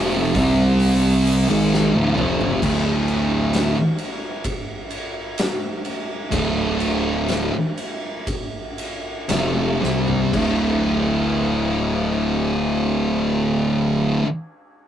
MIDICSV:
0, 0, Header, 1, 4, 480
1, 0, Start_track
1, 0, Key_signature, -1, "minor"
1, 0, Tempo, 909091
1, 1382, Time_signature, 4, 2, 24, 8
1, 2348, Tempo, 947867
1, 3788, Tempo, 1001669
1, 4748, Tempo, 1056338
1, 7286, End_track
2, 0, Start_track
2, 0, Title_t, "Distorted electric guitar"
2, 0, Program_c, 0, 30
2, 0, Note_on_c, 0, 41, 102
2, 0, Note_on_c, 0, 48, 93
2, 0, Note_on_c, 0, 53, 102
2, 178, Note_off_c, 0, 41, 0
2, 180, Note_off_c, 0, 48, 0
2, 182, Note_off_c, 0, 53, 0
2, 188, Note_on_c, 0, 48, 88
2, 190, Note_on_c, 0, 55, 100
2, 196, Note_on_c, 0, 60, 103
2, 777, Note_off_c, 0, 48, 0
2, 778, Note_off_c, 0, 55, 0
2, 780, Note_on_c, 0, 44, 95
2, 781, Note_off_c, 0, 60, 0
2, 785, Note_on_c, 0, 51, 97
2, 790, Note_on_c, 0, 56, 101
2, 1013, Note_off_c, 0, 44, 0
2, 1016, Note_off_c, 0, 51, 0
2, 1018, Note_on_c, 0, 38, 93
2, 1019, Note_off_c, 0, 56, 0
2, 1023, Note_on_c, 0, 45, 104
2, 1133, Note_off_c, 0, 38, 0
2, 1135, Note_off_c, 0, 45, 0
2, 1140, Note_on_c, 0, 41, 109
2, 1145, Note_on_c, 0, 48, 115
2, 1150, Note_on_c, 0, 53, 107
2, 1373, Note_off_c, 0, 41, 0
2, 1376, Note_off_c, 0, 48, 0
2, 1378, Note_off_c, 0, 53, 0
2, 1379, Note_on_c, 0, 38, 82
2, 1386, Note_on_c, 0, 45, 84
2, 1389, Note_on_c, 0, 50, 101
2, 1974, Note_off_c, 0, 38, 0
2, 1977, Note_off_c, 0, 45, 0
2, 1979, Note_off_c, 0, 50, 0
2, 3291, Note_on_c, 0, 38, 97
2, 3298, Note_on_c, 0, 45, 103
2, 3299, Note_on_c, 0, 50, 104
2, 3894, Note_off_c, 0, 38, 0
2, 3897, Note_off_c, 0, 45, 0
2, 3898, Note_off_c, 0, 50, 0
2, 4744, Note_on_c, 0, 41, 86
2, 4747, Note_on_c, 0, 48, 81
2, 4749, Note_on_c, 0, 53, 79
2, 4973, Note_off_c, 0, 41, 0
2, 4975, Note_off_c, 0, 48, 0
2, 4976, Note_off_c, 0, 53, 0
2, 4984, Note_on_c, 0, 48, 96
2, 4986, Note_on_c, 0, 55, 99
2, 4990, Note_on_c, 0, 60, 88
2, 5214, Note_off_c, 0, 48, 0
2, 5215, Note_off_c, 0, 55, 0
2, 5217, Note_off_c, 0, 60, 0
2, 5222, Note_on_c, 0, 38, 95
2, 5232, Note_on_c, 0, 45, 98
2, 5239, Note_on_c, 0, 50, 82
2, 6987, Note_off_c, 0, 38, 0
2, 6997, Note_off_c, 0, 45, 0
2, 7004, Note_off_c, 0, 50, 0
2, 7286, End_track
3, 0, Start_track
3, 0, Title_t, "Picked electric bass"
3, 0, Program_c, 1, 34
3, 0, Note_on_c, 1, 29, 114
3, 172, Note_off_c, 1, 29, 0
3, 191, Note_on_c, 1, 36, 106
3, 764, Note_off_c, 1, 36, 0
3, 792, Note_on_c, 1, 32, 86
3, 1011, Note_off_c, 1, 32, 0
3, 1033, Note_on_c, 1, 26, 102
3, 1139, Note_off_c, 1, 26, 0
3, 1151, Note_on_c, 1, 29, 94
3, 1369, Note_off_c, 1, 29, 0
3, 1387, Note_on_c, 1, 26, 99
3, 1964, Note_off_c, 1, 26, 0
3, 3300, Note_on_c, 1, 26, 99
3, 3886, Note_off_c, 1, 26, 0
3, 4748, Note_on_c, 1, 29, 95
3, 4966, Note_off_c, 1, 29, 0
3, 4989, Note_on_c, 1, 36, 94
3, 5207, Note_off_c, 1, 36, 0
3, 5222, Note_on_c, 1, 26, 97
3, 6969, Note_off_c, 1, 26, 0
3, 7286, End_track
4, 0, Start_track
4, 0, Title_t, "Drums"
4, 184, Note_on_c, 9, 46, 69
4, 185, Note_on_c, 9, 36, 102
4, 236, Note_off_c, 9, 46, 0
4, 238, Note_off_c, 9, 36, 0
4, 421, Note_on_c, 9, 46, 92
4, 474, Note_off_c, 9, 46, 0
4, 664, Note_on_c, 9, 46, 66
4, 717, Note_off_c, 9, 46, 0
4, 917, Note_on_c, 9, 38, 75
4, 970, Note_off_c, 9, 38, 0
4, 1029, Note_on_c, 9, 48, 78
4, 1082, Note_off_c, 9, 48, 0
4, 1149, Note_on_c, 9, 45, 97
4, 1202, Note_off_c, 9, 45, 0
4, 1271, Note_on_c, 9, 43, 106
4, 1324, Note_off_c, 9, 43, 0
4, 1385, Note_on_c, 9, 36, 99
4, 1387, Note_on_c, 9, 49, 127
4, 1438, Note_off_c, 9, 36, 0
4, 1440, Note_off_c, 9, 49, 0
4, 1626, Note_on_c, 9, 51, 63
4, 1679, Note_off_c, 9, 51, 0
4, 1865, Note_on_c, 9, 51, 91
4, 1875, Note_on_c, 9, 38, 107
4, 1918, Note_off_c, 9, 51, 0
4, 1928, Note_off_c, 9, 38, 0
4, 2104, Note_on_c, 9, 51, 66
4, 2157, Note_off_c, 9, 51, 0
4, 2345, Note_on_c, 9, 51, 87
4, 2348, Note_on_c, 9, 36, 94
4, 2396, Note_off_c, 9, 51, 0
4, 2399, Note_off_c, 9, 36, 0
4, 2580, Note_on_c, 9, 51, 67
4, 2630, Note_off_c, 9, 51, 0
4, 2819, Note_on_c, 9, 51, 98
4, 2828, Note_on_c, 9, 38, 127
4, 2870, Note_off_c, 9, 51, 0
4, 2879, Note_off_c, 9, 38, 0
4, 3057, Note_on_c, 9, 51, 65
4, 3108, Note_off_c, 9, 51, 0
4, 3296, Note_on_c, 9, 51, 102
4, 3297, Note_on_c, 9, 36, 107
4, 3346, Note_off_c, 9, 51, 0
4, 3347, Note_off_c, 9, 36, 0
4, 3541, Note_on_c, 9, 51, 70
4, 3591, Note_off_c, 9, 51, 0
4, 3784, Note_on_c, 9, 51, 83
4, 3793, Note_on_c, 9, 38, 102
4, 3833, Note_off_c, 9, 51, 0
4, 3841, Note_off_c, 9, 38, 0
4, 4020, Note_on_c, 9, 51, 68
4, 4068, Note_off_c, 9, 51, 0
4, 4257, Note_on_c, 9, 51, 86
4, 4258, Note_on_c, 9, 36, 101
4, 4305, Note_off_c, 9, 51, 0
4, 4306, Note_off_c, 9, 36, 0
4, 4502, Note_on_c, 9, 51, 74
4, 4550, Note_off_c, 9, 51, 0
4, 4745, Note_on_c, 9, 51, 111
4, 4753, Note_on_c, 9, 38, 126
4, 4791, Note_off_c, 9, 51, 0
4, 4799, Note_off_c, 9, 38, 0
4, 4994, Note_on_c, 9, 38, 60
4, 5039, Note_off_c, 9, 38, 0
4, 5103, Note_on_c, 9, 43, 82
4, 5148, Note_off_c, 9, 43, 0
4, 5221, Note_on_c, 9, 36, 106
4, 5222, Note_on_c, 9, 49, 91
4, 5266, Note_off_c, 9, 36, 0
4, 5267, Note_off_c, 9, 49, 0
4, 7286, End_track
0, 0, End_of_file